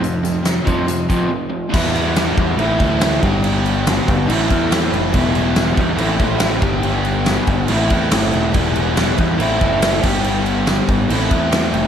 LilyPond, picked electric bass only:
\new Staff \with { instrumentName = "Picked electric bass" } { \clef bass \time 4/4 \key a \minor \tempo 4 = 141 f,4. f,4 f8 r4 | e,4. e,8 a,,8 d,4 g,,8~ | g,,4. g,,8 a,,8 e,4 f,,8 | e,,4. e,8 a,,8 a,,4 g,,8~ |
g,,4. g,,8 a,,8 e,8 g,,8 e,,8 | e,,4. e,8 a,,8 fis,,4 g,,8~ | g,,4. gis,,8 a,,8 e,4 f,,8 | }